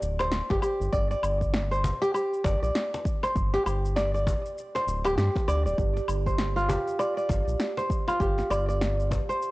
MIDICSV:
0, 0, Header, 1, 6, 480
1, 0, Start_track
1, 0, Tempo, 606061
1, 737, Time_signature, 4, 2, 24, 8
1, 7533, End_track
2, 0, Start_track
2, 0, Title_t, "Kora"
2, 0, Program_c, 0, 46
2, 0, Note_on_c, 0, 67, 86
2, 0, Note_on_c, 0, 74, 84
2, 155, Note_on_c, 0, 72, 71
2, 393, Note_off_c, 0, 67, 0
2, 396, Note_on_c, 0, 67, 100
2, 491, Note_off_c, 0, 67, 0
2, 494, Note_on_c, 0, 67, 80
2, 554, Note_off_c, 0, 74, 0
2, 733, Note_on_c, 0, 74, 115
2, 873, Note_off_c, 0, 74, 0
2, 877, Note_on_c, 0, 74, 85
2, 1096, Note_off_c, 0, 72, 0
2, 1357, Note_on_c, 0, 72, 80
2, 1594, Note_off_c, 0, 67, 0
2, 1597, Note_on_c, 0, 67, 116
2, 1693, Note_off_c, 0, 67, 0
2, 1696, Note_on_c, 0, 67, 81
2, 1754, Note_off_c, 0, 74, 0
2, 1935, Note_on_c, 0, 74, 94
2, 2077, Note_off_c, 0, 74, 0
2, 2080, Note_on_c, 0, 74, 73
2, 2298, Note_off_c, 0, 72, 0
2, 2559, Note_on_c, 0, 72, 75
2, 2798, Note_off_c, 0, 67, 0
2, 2801, Note_on_c, 0, 67, 110
2, 2894, Note_off_c, 0, 67, 0
2, 2898, Note_on_c, 0, 67, 80
2, 2958, Note_off_c, 0, 74, 0
2, 3137, Note_on_c, 0, 74, 105
2, 3278, Note_off_c, 0, 74, 0
2, 3282, Note_on_c, 0, 74, 77
2, 3500, Note_off_c, 0, 72, 0
2, 3762, Note_on_c, 0, 72, 76
2, 3997, Note_off_c, 0, 67, 0
2, 4000, Note_on_c, 0, 67, 106
2, 4096, Note_off_c, 0, 67, 0
2, 4099, Note_on_c, 0, 67, 82
2, 4159, Note_off_c, 0, 74, 0
2, 4339, Note_on_c, 0, 74, 108
2, 4477, Note_off_c, 0, 74, 0
2, 4480, Note_on_c, 0, 74, 74
2, 4702, Note_off_c, 0, 72, 0
2, 4961, Note_on_c, 0, 72, 73
2, 5197, Note_on_c, 0, 65, 81
2, 5217, Note_off_c, 0, 67, 0
2, 5296, Note_on_c, 0, 67, 67
2, 5358, Note_off_c, 0, 74, 0
2, 5537, Note_on_c, 0, 74, 97
2, 5676, Note_off_c, 0, 74, 0
2, 5679, Note_on_c, 0, 74, 78
2, 5901, Note_off_c, 0, 72, 0
2, 6158, Note_on_c, 0, 72, 74
2, 6395, Note_off_c, 0, 65, 0
2, 6398, Note_on_c, 0, 65, 73
2, 6414, Note_off_c, 0, 67, 0
2, 6498, Note_on_c, 0, 67, 94
2, 6557, Note_off_c, 0, 74, 0
2, 6735, Note_on_c, 0, 74, 101
2, 6876, Note_off_c, 0, 74, 0
2, 6879, Note_on_c, 0, 74, 73
2, 7099, Note_off_c, 0, 72, 0
2, 7359, Note_on_c, 0, 72, 85
2, 7533, Note_off_c, 0, 65, 0
2, 7533, Note_off_c, 0, 67, 0
2, 7533, Note_off_c, 0, 72, 0
2, 7533, Note_off_c, 0, 74, 0
2, 7533, End_track
3, 0, Start_track
3, 0, Title_t, "Singing bowl"
3, 0, Program_c, 1, 14
3, 4580, Note_on_c, 1, 67, 71
3, 7533, Note_off_c, 1, 67, 0
3, 7533, End_track
4, 0, Start_track
4, 0, Title_t, "Analog synth bass"
4, 0, Program_c, 2, 38
4, 15, Note_on_c, 2, 26, 104
4, 326, Note_off_c, 2, 26, 0
4, 397, Note_on_c, 2, 31, 98
4, 465, Note_off_c, 2, 31, 0
4, 636, Note_on_c, 2, 31, 100
4, 704, Note_off_c, 2, 31, 0
4, 735, Note_on_c, 2, 31, 100
4, 914, Note_off_c, 2, 31, 0
4, 973, Note_on_c, 2, 31, 90
4, 1525, Note_off_c, 2, 31, 0
4, 1937, Note_on_c, 2, 31, 86
4, 2034, Note_off_c, 2, 31, 0
4, 2077, Note_on_c, 2, 34, 93
4, 2145, Note_off_c, 2, 34, 0
4, 2657, Note_on_c, 2, 31, 101
4, 2835, Note_off_c, 2, 31, 0
4, 2898, Note_on_c, 2, 31, 94
4, 3447, Note_off_c, 2, 31, 0
4, 3859, Note_on_c, 2, 26, 98
4, 4092, Note_off_c, 2, 26, 0
4, 4097, Note_on_c, 2, 43, 88
4, 4194, Note_off_c, 2, 43, 0
4, 4338, Note_on_c, 2, 38, 91
4, 4480, Note_on_c, 2, 26, 105
4, 4492, Note_off_c, 2, 38, 0
4, 4546, Note_off_c, 2, 26, 0
4, 4579, Note_on_c, 2, 31, 101
4, 4756, Note_off_c, 2, 31, 0
4, 4817, Note_on_c, 2, 31, 93
4, 5367, Note_off_c, 2, 31, 0
4, 5777, Note_on_c, 2, 31, 83
4, 5874, Note_off_c, 2, 31, 0
4, 5916, Note_on_c, 2, 34, 98
4, 5984, Note_off_c, 2, 34, 0
4, 6496, Note_on_c, 2, 31, 103
4, 6674, Note_off_c, 2, 31, 0
4, 6732, Note_on_c, 2, 31, 89
4, 7284, Note_off_c, 2, 31, 0
4, 7533, End_track
5, 0, Start_track
5, 0, Title_t, "Cajon"
5, 163, Note_on_c, 9, 38, 71
5, 242, Note_off_c, 9, 38, 0
5, 403, Note_on_c, 9, 38, 65
5, 482, Note_off_c, 9, 38, 0
5, 878, Note_on_c, 9, 38, 40
5, 958, Note_off_c, 9, 38, 0
5, 1458, Note_on_c, 9, 36, 111
5, 1537, Note_off_c, 9, 36, 0
5, 1935, Note_on_c, 9, 38, 83
5, 1948, Note_on_c, 9, 36, 81
5, 2014, Note_off_c, 9, 38, 0
5, 2027, Note_off_c, 9, 36, 0
5, 2330, Note_on_c, 9, 38, 68
5, 2409, Note_off_c, 9, 38, 0
5, 2563, Note_on_c, 9, 38, 57
5, 2642, Note_off_c, 9, 38, 0
5, 2803, Note_on_c, 9, 38, 35
5, 2882, Note_off_c, 9, 38, 0
5, 3381, Note_on_c, 9, 36, 101
5, 3460, Note_off_c, 9, 36, 0
5, 3768, Note_on_c, 9, 38, 69
5, 3847, Note_off_c, 9, 38, 0
5, 3996, Note_on_c, 9, 38, 66
5, 4075, Note_off_c, 9, 38, 0
5, 4247, Note_on_c, 9, 38, 66
5, 4327, Note_off_c, 9, 38, 0
5, 4725, Note_on_c, 9, 38, 37
5, 4805, Note_off_c, 9, 38, 0
5, 5302, Note_on_c, 9, 36, 109
5, 5381, Note_off_c, 9, 36, 0
5, 5774, Note_on_c, 9, 36, 75
5, 5779, Note_on_c, 9, 38, 68
5, 5853, Note_off_c, 9, 36, 0
5, 5858, Note_off_c, 9, 38, 0
5, 6156, Note_on_c, 9, 38, 63
5, 6236, Note_off_c, 9, 38, 0
5, 6396, Note_on_c, 9, 38, 60
5, 6475, Note_off_c, 9, 38, 0
5, 6637, Note_on_c, 9, 38, 40
5, 6716, Note_off_c, 9, 38, 0
5, 7219, Note_on_c, 9, 36, 99
5, 7298, Note_off_c, 9, 36, 0
5, 7533, End_track
6, 0, Start_track
6, 0, Title_t, "Drums"
6, 19, Note_on_c, 9, 82, 77
6, 98, Note_off_c, 9, 82, 0
6, 153, Note_on_c, 9, 77, 77
6, 160, Note_on_c, 9, 82, 36
6, 232, Note_off_c, 9, 77, 0
6, 239, Note_off_c, 9, 82, 0
6, 250, Note_on_c, 9, 38, 108
6, 257, Note_on_c, 9, 82, 46
6, 329, Note_off_c, 9, 38, 0
6, 336, Note_off_c, 9, 82, 0
6, 397, Note_on_c, 9, 36, 117
6, 400, Note_on_c, 9, 82, 25
6, 477, Note_off_c, 9, 36, 0
6, 480, Note_off_c, 9, 82, 0
6, 492, Note_on_c, 9, 77, 74
6, 499, Note_on_c, 9, 82, 78
6, 571, Note_off_c, 9, 77, 0
6, 578, Note_off_c, 9, 82, 0
6, 645, Note_on_c, 9, 82, 37
6, 724, Note_off_c, 9, 82, 0
6, 735, Note_on_c, 9, 36, 126
6, 742, Note_on_c, 9, 82, 48
6, 815, Note_off_c, 9, 36, 0
6, 821, Note_off_c, 9, 82, 0
6, 884, Note_on_c, 9, 82, 26
6, 964, Note_off_c, 9, 82, 0
6, 975, Note_on_c, 9, 77, 79
6, 982, Note_on_c, 9, 82, 83
6, 1054, Note_off_c, 9, 77, 0
6, 1061, Note_off_c, 9, 82, 0
6, 1118, Note_on_c, 9, 36, 66
6, 1125, Note_on_c, 9, 82, 33
6, 1197, Note_off_c, 9, 36, 0
6, 1204, Note_off_c, 9, 82, 0
6, 1216, Note_on_c, 9, 38, 110
6, 1224, Note_on_c, 9, 82, 50
6, 1296, Note_off_c, 9, 38, 0
6, 1303, Note_off_c, 9, 82, 0
6, 1365, Note_on_c, 9, 82, 25
6, 1444, Note_off_c, 9, 82, 0
6, 1463, Note_on_c, 9, 82, 84
6, 1542, Note_off_c, 9, 82, 0
6, 1607, Note_on_c, 9, 82, 34
6, 1686, Note_off_c, 9, 82, 0
6, 1699, Note_on_c, 9, 77, 62
6, 1706, Note_on_c, 9, 82, 49
6, 1778, Note_off_c, 9, 77, 0
6, 1785, Note_off_c, 9, 82, 0
6, 1849, Note_on_c, 9, 82, 23
6, 1929, Note_off_c, 9, 82, 0
6, 1937, Note_on_c, 9, 36, 110
6, 1945, Note_on_c, 9, 82, 80
6, 2016, Note_off_c, 9, 36, 0
6, 2024, Note_off_c, 9, 82, 0
6, 2089, Note_on_c, 9, 82, 34
6, 2168, Note_off_c, 9, 82, 0
6, 2180, Note_on_c, 9, 38, 108
6, 2187, Note_on_c, 9, 82, 48
6, 2259, Note_off_c, 9, 38, 0
6, 2266, Note_off_c, 9, 82, 0
6, 2330, Note_on_c, 9, 82, 25
6, 2409, Note_off_c, 9, 82, 0
6, 2418, Note_on_c, 9, 36, 124
6, 2425, Note_on_c, 9, 82, 82
6, 2497, Note_off_c, 9, 36, 0
6, 2504, Note_off_c, 9, 82, 0
6, 2559, Note_on_c, 9, 77, 80
6, 2566, Note_on_c, 9, 82, 36
6, 2638, Note_off_c, 9, 77, 0
6, 2645, Note_off_c, 9, 82, 0
6, 2659, Note_on_c, 9, 36, 125
6, 2663, Note_on_c, 9, 82, 47
6, 2738, Note_off_c, 9, 36, 0
6, 2743, Note_off_c, 9, 82, 0
6, 2801, Note_on_c, 9, 38, 32
6, 2808, Note_on_c, 9, 82, 25
6, 2880, Note_off_c, 9, 38, 0
6, 2887, Note_off_c, 9, 82, 0
6, 2901, Note_on_c, 9, 77, 75
6, 2908, Note_on_c, 9, 82, 85
6, 2980, Note_off_c, 9, 77, 0
6, 2987, Note_off_c, 9, 82, 0
6, 3051, Note_on_c, 9, 82, 34
6, 3131, Note_off_c, 9, 82, 0
6, 3140, Note_on_c, 9, 38, 96
6, 3147, Note_on_c, 9, 82, 49
6, 3219, Note_off_c, 9, 38, 0
6, 3226, Note_off_c, 9, 82, 0
6, 3290, Note_on_c, 9, 82, 25
6, 3369, Note_off_c, 9, 82, 0
6, 3380, Note_on_c, 9, 36, 73
6, 3386, Note_on_c, 9, 82, 80
6, 3459, Note_off_c, 9, 36, 0
6, 3466, Note_off_c, 9, 82, 0
6, 3529, Note_on_c, 9, 82, 34
6, 3609, Note_off_c, 9, 82, 0
6, 3627, Note_on_c, 9, 82, 49
6, 3706, Note_off_c, 9, 82, 0
6, 3770, Note_on_c, 9, 82, 23
6, 3849, Note_off_c, 9, 82, 0
6, 3866, Note_on_c, 9, 82, 77
6, 3945, Note_off_c, 9, 82, 0
6, 4003, Note_on_c, 9, 77, 77
6, 4010, Note_on_c, 9, 82, 37
6, 4082, Note_off_c, 9, 77, 0
6, 4090, Note_off_c, 9, 82, 0
6, 4101, Note_on_c, 9, 38, 105
6, 4108, Note_on_c, 9, 82, 50
6, 4180, Note_off_c, 9, 38, 0
6, 4187, Note_off_c, 9, 82, 0
6, 4242, Note_on_c, 9, 36, 113
6, 4248, Note_on_c, 9, 82, 25
6, 4321, Note_off_c, 9, 36, 0
6, 4328, Note_off_c, 9, 82, 0
6, 4340, Note_on_c, 9, 77, 69
6, 4347, Note_on_c, 9, 82, 79
6, 4419, Note_off_c, 9, 77, 0
6, 4426, Note_off_c, 9, 82, 0
6, 4489, Note_on_c, 9, 82, 36
6, 4568, Note_off_c, 9, 82, 0
6, 4579, Note_on_c, 9, 36, 119
6, 4584, Note_on_c, 9, 82, 44
6, 4658, Note_off_c, 9, 36, 0
6, 4664, Note_off_c, 9, 82, 0
6, 4727, Note_on_c, 9, 82, 24
6, 4806, Note_off_c, 9, 82, 0
6, 4816, Note_on_c, 9, 77, 75
6, 4824, Note_on_c, 9, 82, 79
6, 4896, Note_off_c, 9, 77, 0
6, 4903, Note_off_c, 9, 82, 0
6, 4961, Note_on_c, 9, 36, 67
6, 4968, Note_on_c, 9, 82, 34
6, 5040, Note_off_c, 9, 36, 0
6, 5047, Note_off_c, 9, 82, 0
6, 5056, Note_on_c, 9, 38, 104
6, 5063, Note_on_c, 9, 82, 43
6, 5135, Note_off_c, 9, 38, 0
6, 5143, Note_off_c, 9, 82, 0
6, 5206, Note_on_c, 9, 82, 23
6, 5285, Note_off_c, 9, 82, 0
6, 5304, Note_on_c, 9, 82, 80
6, 5383, Note_off_c, 9, 82, 0
6, 5445, Note_on_c, 9, 82, 32
6, 5524, Note_off_c, 9, 82, 0
6, 5538, Note_on_c, 9, 77, 60
6, 5545, Note_on_c, 9, 82, 47
6, 5617, Note_off_c, 9, 77, 0
6, 5624, Note_off_c, 9, 82, 0
6, 5688, Note_on_c, 9, 82, 23
6, 5767, Note_off_c, 9, 82, 0
6, 5777, Note_on_c, 9, 36, 110
6, 5785, Note_on_c, 9, 82, 73
6, 5856, Note_off_c, 9, 36, 0
6, 5865, Note_off_c, 9, 82, 0
6, 5925, Note_on_c, 9, 82, 35
6, 6005, Note_off_c, 9, 82, 0
6, 6016, Note_on_c, 9, 38, 97
6, 6024, Note_on_c, 9, 82, 47
6, 6096, Note_off_c, 9, 38, 0
6, 6103, Note_off_c, 9, 82, 0
6, 6169, Note_on_c, 9, 82, 25
6, 6248, Note_off_c, 9, 82, 0
6, 6256, Note_on_c, 9, 36, 112
6, 6265, Note_on_c, 9, 82, 77
6, 6335, Note_off_c, 9, 36, 0
6, 6345, Note_off_c, 9, 82, 0
6, 6402, Note_on_c, 9, 77, 80
6, 6409, Note_on_c, 9, 82, 36
6, 6481, Note_off_c, 9, 77, 0
6, 6489, Note_off_c, 9, 82, 0
6, 6495, Note_on_c, 9, 36, 120
6, 6506, Note_on_c, 9, 82, 43
6, 6574, Note_off_c, 9, 36, 0
6, 6585, Note_off_c, 9, 82, 0
6, 6642, Note_on_c, 9, 38, 33
6, 6649, Note_on_c, 9, 82, 22
6, 6721, Note_off_c, 9, 38, 0
6, 6728, Note_off_c, 9, 82, 0
6, 6740, Note_on_c, 9, 77, 75
6, 6748, Note_on_c, 9, 82, 77
6, 6820, Note_off_c, 9, 77, 0
6, 6827, Note_off_c, 9, 82, 0
6, 6890, Note_on_c, 9, 82, 32
6, 6969, Note_off_c, 9, 82, 0
6, 6980, Note_on_c, 9, 38, 99
6, 6987, Note_on_c, 9, 82, 44
6, 7059, Note_off_c, 9, 38, 0
6, 7066, Note_off_c, 9, 82, 0
6, 7128, Note_on_c, 9, 82, 23
6, 7207, Note_off_c, 9, 82, 0
6, 7215, Note_on_c, 9, 36, 65
6, 7224, Note_on_c, 9, 82, 74
6, 7294, Note_off_c, 9, 36, 0
6, 7304, Note_off_c, 9, 82, 0
6, 7368, Note_on_c, 9, 82, 30
6, 7447, Note_off_c, 9, 82, 0
6, 7463, Note_on_c, 9, 82, 42
6, 7533, Note_off_c, 9, 82, 0
6, 7533, End_track
0, 0, End_of_file